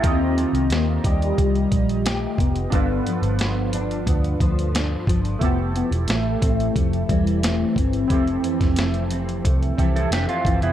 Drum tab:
HH |x-xxx-xxxxxxx-xx|x-xxx-xxxxxxx-xx|x-xxx-xxxxxxx-xx|xxxxxxxxxxxxxxxx|
SD |----o-------o---|----o-------o---|----o-------o---|---oo-------o---|
BD |o-----o-o-o---o-|o-------o-o---o-|o-----o-o-o---o-|o--o----o-o---o-|